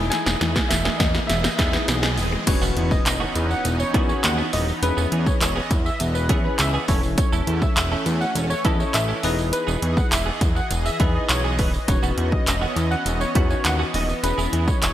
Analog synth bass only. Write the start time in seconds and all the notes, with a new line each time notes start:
Already playing: E1
0.26 E1
0.41 E2
0.70 E1
1.00 E2
1.29 E1
1.59 E2
1.88 B1
2.18 D#1
2.47 E1
2.62 E1
2.77 E2
3.06 E1
3.36 E2
3.65 E1
3.94 E2
4.24 D#2
4.53 D#1
4.83 E1
4.97 E1
5.12 E2
5.41 E1
5.71 E2
6.00 E1
6.30 E2
6.59 C#2
6.89 E1
7.33 E1
7.47 E2
7.77 E1
8.06 E2
8.35 E1
8.65 E2
8.94 A1
9.24 E1
9.68 E1
9.82 E2
10.12 E1
10.41 E2
10.71 E1
11.00 E2
11.29 B1
11.59 D#1
11.88 E1
12.03 E1
12.18 E2
12.47 E1
12.76 E2
13.06 E1
13.35 E2
13.65 D#2
13.94 D#1
14.24 E1
14.38 E1
14.53 E2
14.82 E1